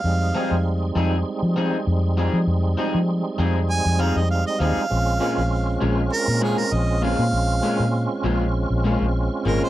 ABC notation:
X:1
M:4/4
L:1/16
Q:"Swing 16ths" 1/4=99
K:Fm
V:1 name="Harmonica"
f6 z8 z2 | z8 a2 f e f e f2- | f6 z2 B2 A B e2 f2- | f6 z8 B c |]
V:2 name="Clean electric guitar"
z2 [F,CEA]2 z2 [F,CEA]2 z2 [F,CEA]2 z2 [F,CEA]2 | z2 [F,CEA]2 z2 [F,CEA]2 z2 [F,CEA]2 z2 [F,CEA]2 | z2 [B,,A,DF]2 z2 [B,,A,DF]2 z2 [B,,A,DF]2 z2 [B,,A,DF]2 | z2 [B,,A,DF]2 z2 [B,,A,DF]2 z2 [B,,A,DF]2 z2 [B,,A,DF]2 |]
V:3 name="Tonewheel organ"
[G,A,CE]16- | [G,A,CE]16 | [A,CDF]16- | [A,CDF]16 |]
V:4 name="Fingered electric bass" clef=bass
F,,2 z F,,3 F,,2 z F,2 z F,,3 F, | F,,2 z F,2 z F,,3 F,,2 F,,2 z E,, z | B,,,2 z B,,,3 B,,,2 z B,,2 z B,,,3 B,, | B,,,2 z B,,2 z B,,,3 B,,,2 B,,,2 z A,,, z |]